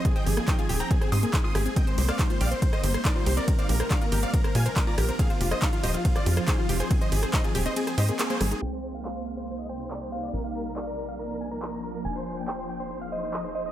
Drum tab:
RD |----------------|x-x-x-x-x-x-x-x-|x-x-x-x-x-x-x-x-|x-x-x-x-x-x-x-x-|
HH |xxoxxxoxxxoxx-ox|xxoxxxoxxxoxx-ox|xxoxxxoxxxoxx-ox|xxoxxxoxxxoxx-ox|
CP |----x-------x---|----x-------x---|----x-------x---|----x-------x---|
SD |---r-----r----r-|---r-----r-r----|---r-----r----r-|---r-----r-r----|
BD |o---o---o---o---|o---o---o---o---|o---o---o---o---|o---o---o---o---|

RD |x-x-x-x-x-x-x-x-|----------------|----------------|----------------|
HH |xxoxxxoxxxoxxxox|----------------|----------------|----------------|
CP |----x-------x---|----x-------x---|----x-------x---|----x-------x---|
SD |---r-----r----r-|----------------|----------------|----------------|
BD |o---o-----------|----------------|----------------|----------------|